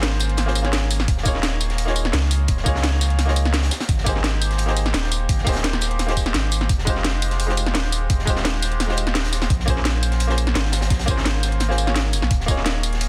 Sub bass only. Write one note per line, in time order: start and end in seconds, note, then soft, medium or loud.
0.00 1.07 G#1 medium
1.08 2.12 D#1 loud
2.13 2.47 C#2 loud
2.48 2.64 D#1 loud
2.66 3.70 C#2 medium
3.89 4.93 G#1 loud
4.94 5.28 D#1 loud
5.29 5.45 G#1 loud
5.47 6.34 D#1 medium
6.34 6.68 G#1 medium
6.70 7.73 F1 loud
7.75 8.09 D#1 loud
8.10 8.26 F1 loud
8.27 9.49 D#1 medium
9.50 10.54 A#1 loud
10.55 10.89 G#1 loud
10.90 11.06 A#1 loud
11.08 12.15 G#1 medium
12.13 12.22 F1 loud
12.22 12.30 A#1 medium
12.31 13.09 D#1 loud